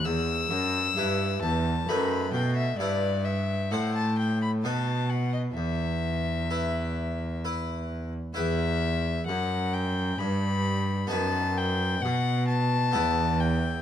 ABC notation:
X:1
M:3/4
L:1/16
Q:1/4=65
K:Em
V:1 name="Violin"
e'6 a2 b2 g e | d2 e2 f a g b a2 f ^d | e8 z4 | e4 f2 g2 b4 |
a2 g2 f2 a4 g2 |]
V:2 name="Harpsichord"
z4 [EB]4 [A,^DB]4 | [EB]4 [Ec]4 [^DB]4 | z4 [EB]4 [EB]4 | [EB]12 |
[B,^DB]8 [B,EB]4 |]
V:3 name="Harpsichord" clef=bass
E,,2 F,,2 G,,2 E,,2 F,,2 B,,2 | G,,4 A,,4 B,,4 | E,,12 | E,,4 F,,4 G,,4 |
F,,4 B,,4 E,,4 |]
V:4 name="Cello" clef=bass
E,,2 F,,2 G,,2 E,,2 F,,2 B,,2 | G,,4 A,,4 B,,4 | E,,12 | E,,4 F,,4 G,,4 |
F,,4 B,,4 E,,4 |]